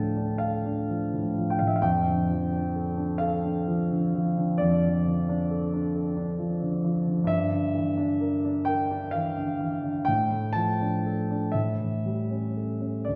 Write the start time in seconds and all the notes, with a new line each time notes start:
Already playing: D2 A2 F3 D4 A4 G5 A5
0.17 D4
0.38 A4 F5
0.66 D4
0.90 F3
1.14 A2
1.38 F3
1.50 G5
1.59 A2 F5
1.67 E5
1.76 F5
1.82 F2 G5
2.08 D3
2.30 F3
2.52 D4
2.76 A4
2.97 D4
3.18 A4 F5
3.44 D4
3.68 F3
3.90 D3
4.14 F3
4.37 D3
4.58 F2 D5
4.84 F3
5.06 D3
5.29 D4
5.51 A4
5.74 D4
5.95 A4
6.17 D4
6.39 F3
6.61 D3
6.84 F3
7.06 D3
7.24 G2 E5
7.52 D3
7.74 E3
7.97 D4
8.21 A#4
8.45 D4
8.65 A#4 G5
8.91 D4
9.11 E3 F5
9.37 D3
9.60 E3
9.84 D3
10.05 A2 G5
10.31 A3
10.53 F3 A5
10.81 D4
11.06 A4
11.31 D4
11.52 A2 E5
11.80 E3
12.06 G3
12.31 C#4
12.57 A4
12.81 C#4
13.05 D2 D5